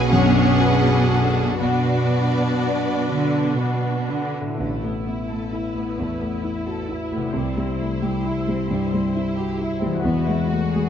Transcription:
Already playing: B1 B2 F#3 B3 C#4 G#4 B4
0.12 F#2 D4 B4 C#5 F#5
0.61 F#4 B4
1.09 B3 A4
1.59 B2 B3 D4 F#4 B4 D5
2.09 F#3
2.58 B3
3.08 D3 B4
3.58 B2 F#4
4.09 D3 B3
4.41 A2
4.46 A3 E4
4.55 B4
4.59 A1 A2 A3 E4
4.83 A3 B3
5.07 B3 E4
5.30 A3 A4
5.52 E4
5.75 A3 B3
5.99 E2 A3
6.21 A3 B3
6.44 E4
6.66 F#4 A4
6.89 E4
7.12 A3 B3
7.16 C3
7.21 G3
7.25 E4
7.30 C5
7.34 C2 C3 G3
7.57 G3 C4
7.80 A3 E4
8.03 G3 G4
8.25 E4
8.48 G3 C4
8.70 G2 G3
8.93 G3 C4
9.14 E4
9.36 F#4 G4
9.58 E4
9.80 G3 C4
9.86 E3
9.90 G#3
9.95 F#4
9.99 B3 B4
10.04 E2 F#4 B4
10.25 G#3 E4
10.48 A3 F#4
10.73 G#3 G#4

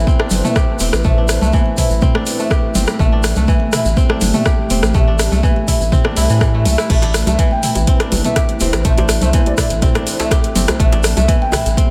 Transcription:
Already playing: E3 A3 D4 E4 B4 C5
0.07 C4, kick, high conga, shaker
0.19 D4, cross-stick, muted conga
0.30 G1, open hi-hat, low conga, shaker
0.44 A3, mid tom, high conga, shaker
0.56 G4, kick, cross-stick, muted conga, shaker
0.79 E1 C4, open hi-hat, muted conga, shaker
0.93 A1, cross-stick, shaker
1.04 A1 A3, kick, mid tom, muted conga, shaker
1.18 D4
1.28 cross-stick, open hi-hat, shaker
1.41 C2 A3, muted conga, low conga, shaker
1.53 E3, kick, high conga, shaker
1.66 muted conga
1.77 E4, kick, mid tom, open hi-hat, shaker
1.90 A1, muted conga, shaker
2.01 C4, kick, mid tom, shaker
2.15 D4, cross-stick, muted conga
2.26 open hi-hat, shaker
2.39 A3, shaker
2.50 G4, kick, cross-stick, muted conga, shaker
2.75 G1 C4, open hi-hat, muted conga, high conga, low conga, shaker
2.87 cross-stick, shaker
2.99 A1 A3 G4, kick, mid tom, muted conga, high conga, shaker
3.12 D4
3.23 cross-stick, open hi-hat, shaker
3.36 C2 A3, muted conga, low conga, shaker
3.47 E3, kick, high conga, shaker
3.60 muted conga
3.72 E4, cross-stick, mid tom, open hi-hat, shaker
3.84 A1, muted conga, shaker
3.96 C4, kick, high conga, shaker
4.09 D4, cross-stick, muted conga
4.21 G1, open hi-hat, low conga, shaker
4.33 A3, mid tom, high conga, shaker
4.45 G4, kick, cross-stick, muted conga, shaker
4.70 E1 C4, open hi-hat, muted conga, shaker
4.82 A1, cross-stick, shaker
4.94 A1 A3, kick, mid tom, muted conga, high conga, shaker
5.07 D4
5.19 cross-stick, open hi-hat, shaker
5.31 C2 A3, muted conga, low conga, shaker
5.43 E3, kick, high conga, shaker
5.56 muted conga
5.68 E4, kick, mid tom, open hi-hat, shaker
5.81 A1, muted conga, shaker
5.92 C4, kick, mid tom, shaker
6.04 D4, cross-stick, muted conga
6.16 C2 E4, open hi-hat, shaker
6.29 A2 E3, shaker
6.41 E3, kick, cross-stick, muted conga, shaker
6.55 A3
6.65 C2 A3, open hi-hat, muted conga, high conga, low conga, shaker
6.78 E4, cross-stick, shaker
6.90 A1 A3 E4 B4 C5, kick, closed hi-hat, mid tom, crash, muted conga, high conga, djembe tone, shaker
7.02 D4, closed hi-hat, djembe slap
7.14 cross-stick, open hi-hat, shaker
7.27 C2 A3 E5, closed hi-hat, muted conga, djembe tone, low conga, shaker
7.39 E3, kick, closed hi-hat, high conga, shaker
7.51 G5, muted conga
7.63 E4, mid tom, open hi-hat, shaker
7.75 A1, closed hi-hat, muted conga, djembe tone, shaker
7.87 C4, kick, closed hi-hat, high conga, shaker
8.00 D4, cross-stick, closed hi-hat, muted conga
8.12 G1, open hi-hat, djembe tone, low conga, shaker
8.24 A3 E5, closed hi-hat, mid tom, high conga, shaker
8.36 G4, kick, cross-stick, closed hi-hat, muted conga, shaker
8.49 closed hi-hat
8.60 E1 C4, open hi-hat, muted conga, djembe tone, shaker
8.73 A1, cross-stick, closed hi-hat, djembe slap, shaker
8.85 A1 A3 A4 C5, kick, closed hi-hat, mid tom, muted conga, shaker
8.97 D4 C5, closed hi-hat, djembe slap, djembe tone
9.09 cross-stick, open hi-hat, shaker
9.21 C2 A3 C5, closed hi-hat, muted conga, low conga, shaker
9.33 E3 C5, kick, closed hi-hat, high conga, shaker
9.46 D5, closed hi-hat, muted conga, djembe tone
9.58 E4 D5, kick, cross-stick, mid tom, open hi-hat, shaker
9.70 A1, closed hi-hat, muted conga, shaker
9.82 C4, kick, closed hi-hat, mid tom, djembe tone, shaker
9.95 D4, cross-stick, closed hi-hat, muted conga
10.07 open hi-hat, shaker
10.19 A3, closed hi-hat, djembe slap, shaker
10.31 G4, kick, cross-stick, closed hi-hat, muted conga, djembe tone, shaker
10.44 closed hi-hat
10.55 G1 C4, open hi-hat, muted conga, high conga, low conga, shaker
10.67 cross-stick, closed hi-hat, djembe tone, shaker
10.79 A1 A3 G4, kick, closed hi-hat, mid tom, muted conga, high conga, shaker
10.92 D4, closed hi-hat, djembe slap
11.03 cross-stick, open hi-hat, shaker
11.17 C2 A3 E5, closed hi-hat, muted conga, djembe tone, low conga, shaker
11.28 E3, kick, closed hi-hat, high conga, shaker
11.41 G5, muted conga
11.52 E4, cross-stick, mid tom, open hi-hat, djembe tone, shaker
11.66 A1, closed hi-hat, muted conga, shaker
11.77 C4, kick, closed hi-hat, high conga, shaker

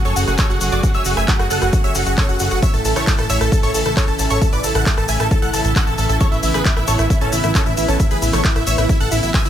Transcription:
Already playing: C#3 F#3 A3 G#4
0.05 F#1 A4 C#5 C#6, closed hi-hat, shaker
0.16 F#1 F#4 F#5, open hi-hat, shaker
0.27 F#1 F#4 F#5, cross-stick, shaker
0.38 A4 C#5 C#6, kick, clap, closed hi-hat, shaker
0.50 F#1 F#4 F#5, shaker
0.61 F#1 F#4 F#5, open hi-hat, shaker
0.72 F#1 F#4 D5 D6, closed hi-hat, shaker
0.83 F#4 F#5, kick, closed hi-hat, shaker
0.94 F#1 C#5 E5 E6, closed hi-hat, shaker
1.05 F#1 F#4 F#5, open hi-hat, shaker
1.17 F#1 E5 G#5 G#6, cross-stick, closed hi-hat, shaker
1.28 F#4 F#5, kick, clap, closed hi-hat, shaker
1.39 F#1 F#4 F#5, cross-stick, closed hi-hat, shaker
1.50 F#1 A4 F#5 F#6, open hi-hat, shaker
1.62 F#1 F#4 F#5, cross-stick, closed hi-hat, shaker
1.73 F#4 F#5, kick, closed hi-hat, shaker
1.84 F#1 C#5 E5 E6, closed hi-hat, shaker
1.95 F#1 F#4 F#5, open hi-hat, shaker
2.06 F#1 F#4 F#5, closed hi-hat, shaker
2.18 A4 C#5 C#6, kick, clap, closed hi-hat, shaker
2.29 F#1 F#4 F#5, shaker
2.39 F#1 F#4 F#5, open hi-hat, shaker
2.50 F#1 F#4 F#5, closed hi-hat, shaker
2.62 E3 E4 C#5 E5 E6, kick, closed hi-hat, shaker
2.73 A1 A4 A5, closed hi-hat, shaker
2.85 A1 A4 A5, open hi-hat, shaker
2.96 A1 A4 C#5 C#6, cross-stick, clap, closed hi-hat, shaker
3.07 A4 A5, kick, clap, closed hi-hat, shaker
3.18 A1 A4 A5, cross-stick, closed hi-hat, shaker
3.30 A1 C#5 E5 E6, open hi-hat, shaker
3.41 A1 A4 A5, cross-stick, closed hi-hat, shaker
3.52 A4 A5, kick, closed hi-hat, shaker
3.63 A1 A4 C#5 C#6, closed hi-hat, shaker
3.74 A1 A4 A5, open hi-hat, shaker
3.85 A1 A4 A5, cross-stick, closed hi-hat, shaker
3.97 A4 C#5 C#6, kick, clap, closed hi-hat, shaker
4.07 A1 A4 A5, shaker
4.19 A1 A4 A5, open hi-hat, shaker
4.30 A1 A4 C#5 C#6, closed hi-hat, shaker
4.42 A4 A5, kick, closed hi-hat, shaker
4.53 A1 B4 D5 D6, closed hi-hat, shaker
4.64 A1 A4 A5, open hi-hat, shaker
4.75 A1 A4 F#5 F#6, cross-stick, closed hi-hat, shaker
4.86 A4 A5, kick, clap, closed hi-hat, shaker
4.97 A1 A4 A5, cross-stick, closed hi-hat, shaker
5.08 A1 E5 G#5 G#6, open hi-hat, shaker
5.20 A1 A4 A5, cross-stick, closed hi-hat, shaker
5.31 A4 A5, kick, closed hi-hat, shaker
5.42 A1 A4 F#5 F#6, closed hi-hat, shaker
5.53 A1 A4 A5, open hi-hat, shaker
5.64 A1 A4 A5, closed hi-hat, shaker
5.76 A4 F#5 F#6, kick, clap, closed hi-hat, shaker
5.87 A1 A4 A5, shaker
5.98 A1 A4 A5, open hi-hat, shaker
6.09 A1 A4 A5, closed hi-hat, shaker
6.20 B3 A4 C#5 C#6, kick, closed hi-hat, shaker
6.32 A1 E4 E5, closed hi-hat, shaker
6.43 A1 E4 E5, open hi-hat, shaker
6.54 A1 G#4 B4 B5, cross-stick, clap, closed hi-hat, shaker
6.65 E4 E5, kick, clap, closed hi-hat, shaker
6.76 A1 E4 E5, cross-stick, closed hi-hat, shaker
6.87 A1 A4 C#5 C#6, open hi-hat, shaker
6.99 A1 E4 E5, cross-stick, closed hi-hat, shaker
7.10 E4 E5, kick, closed hi-hat, shaker
7.21 A1 C#4 A4 A5, closed hi-hat, shaker
7.32 A1 E4 E5, open hi-hat, shaker
7.43 A1 E4 E5, cross-stick, closed hi-hat, shaker
7.55 C#4 A4 A5, kick, clap, closed hi-hat, shaker
7.66 A1 E4 E5, shaker
7.77 A1 E4 E5, open hi-hat, shaker
7.88 A1 C#4 A4 A5, closed hi-hat, shaker
7.99 E4 E5, kick, closed hi-hat, shaker
8.11 A1 G#4 B4 B5, closed hi-hat, shaker
8.22 A1 E4 E5, open hi-hat, shaker
8.33 A1 A4 C#5 C#6, cross-stick, clap, closed hi-hat, shaker
8.44 E4 E5, kick, clap, closed hi-hat, shaker
8.55 A1 E4 E5, cross-stick, closed hi-hat, shaker
8.67 A1 C#5 E5 E6, open hi-hat, shaker
8.78 A1 E4 E5, cross-stick, closed hi-hat, shaker
8.89 E4 E5, kick, closed hi-hat, shaker
9.00 A1 A4 F#5 F#6, closed hi-hat, shaker
9.11 A1 E4 E5, open hi-hat, shaker
9.23 A1 E4 E5, closed hi-hat, shaker
9.34 E5 G#5 G#6, kick, clap, closed hi-hat, shaker
9.45 A1 E4 E5, closed hi-hat, shaker

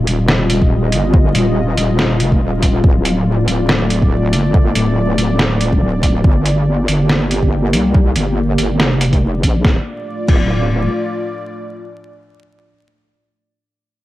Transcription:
Already playing: G3 F4 D#5
0.07 D#1, closed hi-hat
0.28 snare
0.50 closed hi-hat
0.62 kick
0.92 G1, closed hi-hat
1.14 kick
1.35 D#1, closed hi-hat
1.77 D#1, closed hi-hat
1.99 snare
2.20 F1, closed hi-hat
2.32 kick
2.41 D#1
2.63 kick, closed hi-hat
2.84 D1 A3 D5, kick
3.05 closed hi-hat
3.48 D1, closed hi-hat
3.69 snare
3.90 closed hi-hat
4.02 kick
4.33 G1, closed hi-hat
4.54 kick
4.75 D1, closed hi-hat
5.18 D1, closed hi-hat
5.39 snare
5.61 D#1, closed hi-hat
5.72 kick
5.82 D1
6.03 kick, closed hi-hat
6.24 G1 A#3 G4, kick
6.46 closed hi-hat
6.88 G1, closed hi-hat
7.09 snare
7.31 closed hi-hat
7.43 kick
7.73 C2, closed hi-hat
7.94 kick
8.16 G1, closed hi-hat
8.58 G1, closed hi-hat
8.80 F1, snare
9.01 closed hi-hat
9.13 kick, closed hi-hat
9.43 A#1, kick, closed hi-hat
9.64 D1 A3 F4 D5, kick, snare
10.28 D1, kick, crash

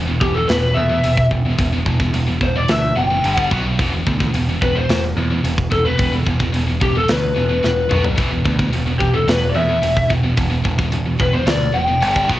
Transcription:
Already playing: E1
0.07 E2 B2
0.21 E1 E2 B2 G4, kick
0.34 E2 B2 A4
0.48 E1 E2 B2 B4, snare, open hi-hat
0.74 E2 B2 E5
0.89 E2 B2
1.03 E1 E2 B2, open hi-hat
1.17 kick
1.31 E1 E2 B2, kick
1.45 E2 B2
1.58 E1 E2 B2, kick, open hi-hat
1.73 E2 B2
1.86 E1 E2 B2, kick
2.00 E2 B2, kick
2.14 E1 E2 B2, open hi-hat
2.27 E2 B2
2.41 E1 E2 B2 C5, kick
2.56 E2 B2 D5
2.68 D2 E2 B2 E5, snare, open hi-hat
2.96 F#1 E2 B2 G5
3.10 E2 B2
3.24 G1 G2 D3 G3, open hi-hat
3.33 F#5
3.38 kick
3.51 B1 B2 F#3 B3, kick
3.66 B2 F#3
3.79 E1 E2 B2 E3, kick, open hi-hat
3.94 E2 B2
4.07 D2 E2 B2, kick
4.20 E2 B2, kick
4.34 E1 E2 B2, open hi-hat
4.49 E2 B2
4.62 E1 E2 B2 B4, kick
4.76 E2 B2 C5
4.89 E1 E2 B2, snare, open hi-hat
5.17 E2 B2
5.30 E2 B2
5.44 E1 E2 B2, open hi-hat
5.58 kick
5.71 E1 E2 B2 A4, kick
5.84 E2 B2 B4
5.98 E1 E2 B2, kick, open hi-hat
6.12 E2 B2
6.26 E1 E2 B2, kick
6.39 E2 B2, kick
6.52 E1 E2 B2, open hi-hat
6.67 E2 B2
6.80 E1 E2 B2 G4, kick
6.95 E2 B2 A4
7.08 D2 E2 B2 B4, snare, open hi-hat
7.36 E1 E2 B2
7.49 E2 B2
7.63 E1 E2 B2 B4, snare
7.89 B1 B2 F#3 B3, mid tom
8.03 B2 F#3, floor tom
8.16 E1 E2 B2 E3, kick, open hi-hat
8.30 E2 B2
8.44 D2 E2 B2, kick
8.59 E2 B2, kick
8.73 E1 E2 B2, open hi-hat
8.86 E2 B2
8.99 E1 E2 B2 G4, kick
9.14 E2 B2 A4
9.27 E1 E2 B2 B4, snare, open hi-hat
9.49 D5
9.55 E2 B2 E5
9.69 E2 B2
9.82 E1 E2 B2, open hi-hat
9.96 kick
10.10 E1 E2 B2, kick
10.23 E2 B2
10.37 E1 E2 B2, kick, open hi-hat
10.50 E2 B2
10.64 E1 E2 B2, kick
10.78 E2 B2, kick
10.92 E1 E2 B2, open hi-hat
11.06 E2 B2
11.19 E1 E2 B2 B4, kick
11.33 E2 B2 C5
11.46 D2 E2 B2 D5, snare, open hi-hat
11.74 E1 E2 B2 G5
11.88 E2 B2
12.01 G1 G2 D3 G3, open hi-hat
12.16 kick
12.28 B1 B2 F#3 B3, kick

